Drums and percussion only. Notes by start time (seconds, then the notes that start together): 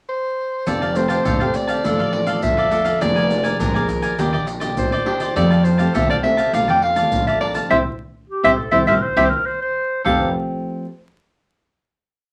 0.67 pandeiro, shaker, surdo
0.82 pandeiro, shaker
0.95 pandeiro, shaker
1.10 pandeiro, shaker
1.25 pandeiro, shaker, surdo
1.40 pandeiro, shaker
1.54 pandeiro, shaker
1.68 pandeiro, shaker
1.84 pandeiro, shaker, surdo
1.99 pandeiro, shaker
2.13 pandeiro
2.27 pandeiro, shaker
2.42 pandeiro, shaker, surdo
2.58 pandeiro, shaker
2.71 pandeiro, shaker
2.85 pandeiro, shaker
3.01 pandeiro, shaker, surdo
3.17 pandeiro, shaker
3.30 pandeiro, shaker
3.44 pandeiro, shaker
3.60 pandeiro, shaker, surdo
3.76 pandeiro, shaker
3.88 pandeiro, shaker, surdo
4.03 pandeiro, shaker
4.19 pandeiro, shaker, surdo
4.34 pandeiro, shaker
4.47 pandeiro, shaker
4.61 pandeiro, shaker
4.77 pandeiro, shaker, surdo
4.92 pandeiro, shaker
5.06 pandeiro
5.20 pandeiro, shaker
5.36 pandeiro, shaker, surdo
5.51 pandeiro, shaker
5.65 pandeiro, shaker
5.79 pandeiro, shaker
5.95 pandeiro, shaker, surdo
6.10 pandeiro, shaker
6.24 pandeiro
6.38 pandeiro, shaker
6.54 pandeiro, shaker, surdo
6.69 pandeiro, shaker
6.82 pandeiro
6.96 pandeiro, shaker
7.12 pandeiro, shaker, surdo
7.27 pandeiro, shaker
7.41 pandeiro
7.55 pandeiro, shaker
7.71 surdo
8.44 surdo
8.72 surdo
8.88 surdo
9.17 surdo
10.05 surdo